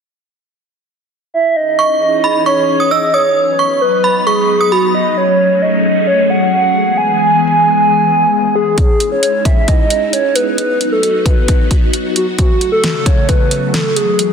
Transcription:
1.34 soft synth lead E5
1.56 string machine E3 C#4 D#4 G#4, soft synth lead D#5
1.79 synth bell C#6
2.01 soft synth lead D#5
2.24 synth bell B5
2.46 soft synth lead C#5, synth bell C#6
2.80 synth bell D#6
2.91 soft synth lead D#5, synth bell E6
3.14 soft synth lead C#5, synth bell D#6
3.36 string machine F#3 B3 D#4 B4
3.59 synth bell C#6
3.81 soft synth lead B4
4.04 synth bell B5
4.27 soft synth lead G#4, synth bell C#6
4.61 synth bell D#6
4.72 soft synth lead F#4, synth bell B5
4.95 soft synth lead D#5
5.17 string machine A3 C#4 G#4, soft synth lead C#5
5.62 soft synth lead D#5
6.07 soft synth lead C#5
6.30 soft synth lead F#5
6.53 soft synth lead F#5
6.75 string machine E3 G#3 B3
6.97 soft synth lead G#5
8.55 soft synth lead G#4
8.78 string machine G#3 C#4 D#4 E4, soft synth lead G#4, kick, closed hi-hat
9.00 closed hi-hat
9.12 soft synth lead C#5
9.23 closed hi-hat
9.45 soft synth lead E5, kick, closed hi-hat
9.68 soft synth lead D#5, kick, closed hi-hat
9.90 closed hi-hat
10.13 soft synth lead C#5, closed hi-hat
10.35 soft synth lead B4, closed hi-hat
10.58 string machine F#3 B3 F#4, closed hi-hat
10.81 closed hi-hat
10.92 soft synth lead A4
11.03 closed hi-hat
11.26 soft synth lead B4, kick, closed hi-hat
11.48 kick, closed hi-hat
11.71 kick, closed hi-hat
11.93 closed hi-hat
12.16 soft synth lead F#4, closed hi-hat
12.38 string machine C#3 F#3 A3, soft synth lead F#4, kick, closed hi-hat
12.61 closed hi-hat
12.72 soft synth lead A4
12.84 snare, closed hi-hat
13.06 soft synth lead C#5, kick, closed hi-hat
13.29 soft synth lead B4, kick, closed hi-hat
13.51 closed hi-hat
13.74 soft synth lead A4, snare, closed hi-hat
13.96 string machine E3 B3 G#4, soft synth lead G#4, closed hi-hat
14.19 closed hi-hat

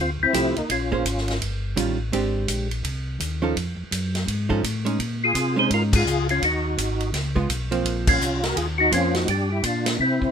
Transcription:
Already playing: tonewheel organ D2
0.01 tonewheel organ C4 F4
0.20 tonewheel organ D2 C4 E4
0.33 tonewheel organ C2, hollow-body jazz guitar F3 A3 E4 G4, kick, hi-hat pedal, ride
0.56 tonewheel organ C2 A#3 D#4, ride
0.69 tonewheel organ A#1 C#4 F4, kick, ride
0.92 hollow-body jazz guitar A#3 C#4 G#4 C5, kick
1.05 tonewheel organ G#1, kick, hi-hat pedal, ride
1.18 snare
1.28 snare, ride
1.41 tonewheel organ G1, kick, ride
1.76 tonewheel organ A1, hollow-body jazz guitar D#3 G3 C#4 F4, kick, hi-hat pedal, ride
2.12 tonewheel organ G#1, hollow-body jazz guitar G#3 C4 D4 G4, kick, ride
2.48 tonewheel organ A#1, kick, hi-hat pedal, ride
2.71 ride
2.84 tonewheel organ C2, kick, ride
3.20 tonewheel organ D#2, kick, hi-hat pedal, ride
3.42 hollow-body jazz guitar F3 C#4 D#4 A4
3.56 tonewheel organ F2, kick, ride
3.77 tonewheel organ F2
3.91 tonewheel organ F#2, kick, hi-hat pedal, ride
4.15 snare, ride
4.28 tonewheel organ G#2, kick, ride
4.49 hollow-body jazz guitar F3 C#4 D#4 A4, kick
4.63 tonewheel organ A2, kick, hi-hat pedal, ride
4.85 hollow-body jazz guitar G#3 C#4 D#4, ride
4.99 tonewheel organ A#2, kick, ride
5.24 tonewheel organ F4 G#4
5.35 tonewheel organ C3, kick, hi-hat pedal, ride
5.56 hollow-body jazz guitar G#3 C#4 D#4, tonewheel organ G#4 C5
5.70 tonewheel organ G#2 F4 A#4, kick, ride
5.93 tonewheel organ F4 G#4, kick, crash
6.05 tonewheel organ C#2, hi-hat pedal
6.29 tonewheel organ C#4 F4, ride
6.42 tonewheel organ D#2 D#4 F#4, kick, ride
6.78 tonewheel organ G#1, kick, hi-hat pedal, ride
7.00 ride
7.13 tonewheel organ C#2, kick, snare, ride
7.36 hollow-body jazz guitar G#3 B3 F4, kick
7.49 tonewheel organ B1, kick, hi-hat pedal, ride
7.71 hollow-body jazz guitar F3 A#3 C4, ride
7.85 tonewheel organ A#1, kick, ride
8.07 tonewheel organ C#4 F4, kick, crash
8.21 tonewheel organ C2, hi-hat pedal
8.43 tonewheel organ F#4 A#4, snare, ride
8.56 tonewheel organ D#2 F4 G#4, kick, ride
8.78 tonewheel organ D#4 F#4
8.92 tonewheel organ F2 C#4 F4, hollow-body jazz guitar F3 A#3 C4, kick, hi-hat pedal, ride
9.14 tonewheel organ D#4 F#4, snare, ride
9.27 tonewheel organ G2 D4 G4, kick, ride
9.50 tonewheel organ E4 G4
9.63 tonewheel organ A#2 D4 F4, kick, hi-hat pedal, ride
9.86 snare, ride
9.99 tonewheel organ C3 C4 E4, kick
10.22 tonewheel organ C3, kick

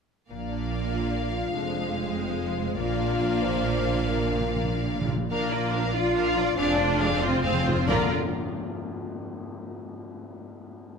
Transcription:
0.30 double bass section A#1, harp A#2, cello section A#2, trombone section F3 D4, french horn section A#3, viola section A#3, violin section D5 F5
0.51 harp D4
0.72 harp A#4
0.92 french horn section F4, harp D5
1.15 harp A#4
1.35 harp F4
1.54 double bass section F1, harp F2, cello section F2, viola section G#3, trombone section C4, french horn section D4, violin section C5
1.76 harp C4
1.96 harp G#4
2.17 french horn section C4, harp C5
2.37 harp G#4
2.57 harp F4
2.78 double bass section A#1, harp A#2, timpani A#2, cello section A#2, trombone section F3 D4, viola section A#3, french horn section F4, violin section D5 F5
2.87 timpani A#2
2.99 harp D4
3.10 timpani A#2
3.18 timpani A#2, harp A#4
3.25 timpani A#2
3.33 timpani A#2
3.40 timpani A#2, french horn section C5, harp D5
3.47 timpani A#2
3.55 timpani A#2
3.63 timpani A#2, harp A#4
3.71 timpani A#2
3.78 timpani A#2
3.84 timpani A#2, harp F4
3.94 timpani A#2
4.05 harp A#2, french horn section A#4
4.09 timpani A#2
4.17 timpani A#2
4.25 timpani A#2, harp D4
4.33 timpani A#2
4.40 timpani A#2
4.46 timpani A#2, harp A#4
4.56 timpani A#2
4.64 timpani A#2
4.68 timpani A#2, harp D5
4.79 timpani A#2
4.86 timpani A#2, harp A#4
4.93 timpani A#2
5.01 timpani A#2
5.08 timpani A#2, harp F4
5.16 timpani A#2
5.30 double bass section A#1, harp A#2, french horn section A#3, cello section A#3, viola section D4, flute section A#4, violin section A#4 F5
5.51 harp D4, viola section F4, violin section D5
5.73 trombone section F3 D4, viola section D4, harp A#4, violin section A#4 F5
5.93 viola section F4, french horn section F4, cello section F4, violin section D5, flute section F5, harp F5
6.15 viola section D4, violin section A#4 F5, harp D5
6.35 trombone section F3 D4, viola section F4, harp A#4, violin section D5
6.56 double bass section F1, timpani F2, harp F2, viola section C4, french horn section D4, cello section D4, violin section G#4 F5, flute section D5
6.66 timpani F2
6.74 timpani F2
6.78 timpani F2, harp C4, violin section F4 C5, viola section F4
6.89 timpani F2
6.97 timpani F2, trombone section F3 G#3, harp G#4, violin section G#4 F5
7.01 timpani F2, viola section C4
7.12 timpani F2
7.20 timpani F2, french horn section C4, cello section C4, violin section F4 C5, viola section F4, flute section C5, harp F5
7.27 timpani F2
7.35 timpani F2
7.43 timpani F2, viola section C4, violin section G#4 F5, harp C5
7.52 timpani F2
7.60 timpani F2
7.64 timpani F2, trombone section F3 G#3, violin section F4 C5, viola section F4, harp G#4
7.76 timpani F2
7.83 harp A#2 A#3, trombone section F3
7.87 double bass section A#1, timpani A#2, cello section D3, trombone section A#3, french horn section A#3, harp D4 F4 A#4, viola section F4, violin section A#4 D5, flute section A#5, tam-tam
7.93 harp F5

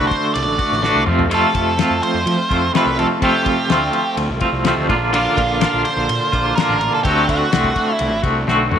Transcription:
Already playing: clean electric guitar D3 A3 D4 F#4
0.07 lead electric guitar C5, kick, ride
0.34 picked electric bass C2, lead electric guitar D5, ride
0.48 picked electric bass A1
0.58 clean electric guitar A3 D4 F#4, kick, ride
0.72 picked electric bass A1, snare
0.82 clean electric guitar D3 A3 D4 F#4, snare
0.95 picked electric bass C2
1.06 picked electric bass F2, clean electric guitar F2 C3 F3 A3 C4 F4, mid tom
1.19 floor tom
1.28 clean electric guitar F2 C3 F3 A3 C4 F4, ride
1.34 lead electric guitar A4
1.52 picked electric bass F2, clean electric guitar F3 A3 F4, kick, ride
1.76 clean electric guitar F3 A3 C4 F4, snare, ride
1.90 picked electric bass F2
2.03 lead electric guitar C5, ride
2.14 picked electric bass F2
2.26 picked electric bass F3, ride
2.49 picked electric bass F2, clean electric guitar F3 A3 C4 F4, kick, ride
2.73 clean electric guitar F2 C3 F3 A3 C4 F4, lead electric guitar B4, snare, ride
2.85 picked electric bass C2
2.97 clean electric guitar F3 A3 C4 F4, lead electric guitar A4, ride
3.20 clean electric guitar F2 C3 F3 A3 C4, lead electric guitar G4, kick, ride
3.24 clean electric guitar F4
3.45 clean electric guitar A3 C4 F4, kick, ride
3.49 clean electric guitar F3
3.69 picked electric bass D2, clean electric guitar F3 A3 C4 F4, snare, ride
3.93 ride
4.17 picked electric bass D2, ride
4.29 picked electric bass C2
4.41 clean electric guitar A3 C4 F4, kick, ride
4.45 clean electric guitar F3
4.52 picked electric bass C2
4.65 clean electric guitar F2 C3 F3 A3 C4 F4, snare, ride
4.77 picked electric bass D2
4.89 picked electric bass A#1, clean electric guitar A#2 D3 A#3 D4 F4, kick, ride
5.12 clean electric guitar A#2 D3 A#3 D4 F4, lead electric guitar F4, ride
5.37 picked electric bass A#1, clean electric guitar A#3 D4 F4, kick, ride
5.60 clean electric guitar D3 A#3 D4 F4, snare, ride
5.73 picked electric bass A#1
5.85 lead electric guitar C5, ride
5.97 picked electric bass A#1
6.09 picked electric bass A#2, ride
6.32 picked electric bass A#1, clean electric guitar A#3 D4 F4, kick, ride
6.55 clean electric guitar A#2 D3 A#3 D4, lead electric guitar A#4, snare, ride
6.60 clean electric guitar F4
6.69 picked electric bass A1
6.80 clean electric guitar A#3 D4 F4, ride
6.94 lead electric guitar A4
7.04 picked electric bass D2, clean electric guitar D3 A3 C4 F#4, lead electric guitar G4, kick, ride
7.27 clean electric guitar A3 C4 F#4, lead electric guitar F#4, kick, ride
7.51 picked electric bass C2, clean electric guitar D3 A3 C4 F#4, snare, ride
7.64 kick
7.76 kick, ride
7.93 lead electric guitar E4
7.99 picked electric bass C2, ride
8.11 picked electric bass A1
8.22 picked electric bass C2, clean electric guitar A3 C4 F#4, kick, ride
8.46 picked electric bass B1, clean electric guitar D3 A3 C4 F#4, snare
8.70 picked electric bass A1, clean electric guitar A3 C4 F#4, mid tom

